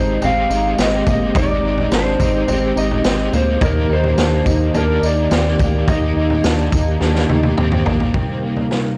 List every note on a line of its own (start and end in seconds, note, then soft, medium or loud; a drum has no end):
0.00 0.18 G#1 loud
0.00 0.19 G#3 medium
0.00 3.57 G#3 medium
0.00 0.21 C4 medium
0.00 3.57 C4 medium
0.00 0.21 D#4 medium
0.00 0.24 D#4 medium
0.00 0.25 G4 loud
0.00 3.58 G4 medium
0.00 0.20 C5 medium
0.20 0.47 G#1 loud
0.20 0.75 G#3 medium
0.20 0.50 C4 medium
0.20 0.77 C4 medium
0.20 0.80 D#4 medium
0.20 floor tom medium
0.20 tambourine medium
0.25 0.81 G4 medium
0.25 0.76 F5 loud
0.50 0.75 G#1 loud
0.50 0.78 D#4 medium
0.50 tambourine medium
0.76 1.03 G#1 loud
0.76 1.32 G#3 medium
0.76 1.34 C4 medium
0.76 1.07 C4 medium
0.76 1.36 D#4 medium
0.76 snare loud
0.76 tambourine medium
0.82 1.37 G4 medium
0.82 1.09 D#5 loud
1.07 1.32 G1 medium
1.07 1.35 A#3 medium
1.07 1.37 D#5 medium
1.07 kick loud
1.07 floor tom medium
1.07 tambourine medium
1.34 1.60 G#1 loud
1.34 2.19 G#3 medium
1.34 2.20 C4 medium
1.34 1.63 D#4 medium
1.34 2.21 D#4 medium
1.34 2.18 G4 medium
1.34 kick loud
1.34 floor tom loud
1.34 tambourine medium
1.38 1.95 D5 loud
1.63 1.88 G#1 loud
1.63 1.92 D#4 medium
1.78 floor tom medium
1.91 2.16 G#1 loud
1.91 2.20 D4 medium
1.91 2.80 C5 loud
1.91 snare loud
1.91 tambourine medium
2.18 2.45 G#1 loud
2.18 2.47 D#4 medium
2.18 2.49 D#4 soft
2.18 2.48 G4 soft
2.18 kick medium
2.18 tambourine medium
2.24 2.47 C4 soft
2.47 2.73 G#1 loud
2.47 3.02 G#3 medium
2.47 2.76 C4 medium
2.47 3.04 C4 medium
2.47 3.06 D#4 medium
2.47 floor tom medium
2.47 tambourine medium
2.52 3.08 G4 medium
2.76 3.01 G#1 loud
2.76 3.04 D#4 medium
2.76 3.36 D#5 loud
2.76 tambourine medium
2.91 floor tom medium
3.03 3.30 G#1 loud
3.03 3.58 G#3 medium
3.03 3.33 C4 medium
3.03 3.62 C4 medium
3.03 3.64 D#4 medium
3.03 snare loud
3.03 tambourine loud
3.08 3.66 G4 medium
3.33 3.58 D2 medium
3.33 3.62 A#3 medium
3.33 3.64 C5 medium
3.33 floor tom medium
3.33 tambourine medium
3.59 3.86 D#2 loud
3.59 4.72 D#3 medium
3.59 8.11 D#3 medium
3.59 8.10 A#3 medium
3.59 4.74 A#3 medium
3.59 3.88 D#4 medium
3.59 8.11 G4 medium
3.59 kick loud
3.59 floor tom loud
3.59 tambourine medium
3.64 4.76 D4 medium
3.64 4.78 G4 medium
3.64 3.92 A#4 medium
3.89 4.15 D#2 loud
3.89 4.17 D#4 medium
3.89 4.79 C5 medium
4.04 floor tom medium
4.17 4.43 D#2 loud
4.17 4.46 D4 medium
4.17 snare loud
4.17 tambourine medium
4.46 4.71 D#2 loud
4.46 4.74 D#4 medium
4.46 kick medium
4.46 tambourine medium
4.73 5.00 D#2 loud
4.73 5.30 D#3 medium
4.73 5.32 A#3 medium
4.73 5.02 D4 medium
4.73 5.32 D4 medium
4.73 floor tom medium
4.73 tambourine medium
4.77 5.35 G4 medium
4.77 5.05 A#4 medium
5.03 5.28 D#2 loud
5.03 5.31 D#4 medium
5.03 5.90 D5 loud
5.03 tambourine medium
5.30 5.56 D#2 loud
5.30 5.85 D#3 medium
5.30 5.88 A#3 medium
5.30 5.60 C4 medium
5.30 5.89 D4 medium
5.30 snare loud
5.30 tambourine medium
5.35 5.93 G4 medium
5.59 5.85 D2 medium
5.59 5.88 A#3 medium
5.59 kick medium
5.59 floor tom medium
5.59 tambourine medium
5.85 6.13 D#2 loud
5.85 7.00 D#3 medium
5.85 7.02 A#3 medium
5.85 6.15 D#4 medium
5.85 kick loud
5.85 floor tom loud
5.85 tambourine medium
5.90 7.05 G4 medium
5.90 6.70 D#5 medium
6.16 6.41 D#2 loud
6.16 6.44 D#4 medium
6.30 floor tom medium
6.44 6.69 D#2 loud
6.44 6.73 D4 medium
6.44 snare loud
6.44 tambourine medium
6.72 6.98 D#2 loud
6.72 7.01 D#4 medium
6.72 kick loud
6.72 tambourine medium
7.00 7.26 D#2 loud
7.00 7.57 D#3 medium
7.00 7.59 A#3 medium
7.00 7.29 D4 medium
7.00 7.59 D4 medium
7.00 snare medium
7.06 7.62 G4 medium
7.15 snare medium
7.29 7.54 D#2 medium
7.29 7.57 D#4 medium
7.29 high tom medium
7.43 high tom medium
7.57 7.83 D#2 loud
7.57 8.67 D#3 medium
7.57 8.67 A#3 medium
7.57 7.86 C4 medium
7.57 8.16 D4 medium
7.57 mid tom medium
7.62 8.67 G4 medium
7.72 mid tom medium
7.86 8.11 A#1 medium
7.86 8.14 A#3 medium
7.86 floor tom loud
8.00 floor tom medium
8.14 8.98 C3 medium
8.14 8.98 G3 soft
8.14 8.43 C4 medium
8.14 8.98 D#4 medium
8.14 8.98 A#4 medium
8.14 kick medium
8.14 floor tom medium
8.43 8.70 A#3 medium
8.56 floor tom medium
8.71 8.98 A#3 medium
8.71 snare medium